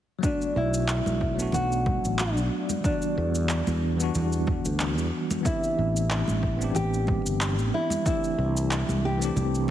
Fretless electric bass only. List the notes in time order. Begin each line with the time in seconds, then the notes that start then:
0.56 B1
1.07 B1
1.54 B1
2.05 A1
2.37 B1
3.18 E2
3.68 E2
4.15 E2
4.66 D2
4.98 E2
5.78 A1
6.29 A1
6.76 A1
7.26 G1
7.59 A1
8.38 C2
8.89 C2
9.36 C2